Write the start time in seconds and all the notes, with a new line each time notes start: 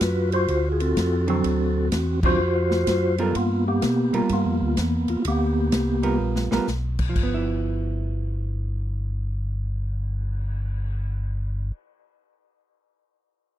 Already playing: F4 F#4
0.01 F#2 B4, kick, snare, hi-hat pedal, ride
0.32 F4 F#4 C5, ride
0.48 D2, kick, ride
0.72 G#4
0.80 C4 F#4 A4, ride
0.97 F2, kick, snare, hi-hat pedal, ride
1.27 D3 F#3 C4 F#4 A4, ride
1.44 D2, kick, ride
1.92 E2, kick, snare, hi-hat pedal, ride
2.23 D3 F#3 C4 F4 F#4 C5, kick, crash
2.38 F2
2.71 snare
2.87 F#2, kick, snare, hi-hat pedal, ride
3.18 G3 B3 F4 A4 A#4, ride
3.35 G2 A#3 B3 F4, kick, ride
3.68 A#3 B3 G4
3.82 B2, kick, snare, hi-hat pedal, ride
4.13 B2 G3 F4 G4 A#4, ride
4.29 G2 F4, kick, ride
4.33 A#3 B3
4.46 F2
4.62 D2
4.77 E2, kick, snare, hi-hat pedal, ride
5.08 E2 F4, ride
5.22 D2 F4, kick, ride
5.28 A#3 B3 G4
5.72 C2, kick, snare, hi-hat pedal, ride
6.03 G3 B3 F4 A#4, ride
6.20 A#1
6.36 snare
6.51 A#1 G3 B3 F4 A#4, snare
6.67 B1, snare, hi-hat pedal
6.99 kick, crash
7.09 F3
7.16 G1, kick, crash
7.23 B3
7.34 E4
7.46 cymbal swell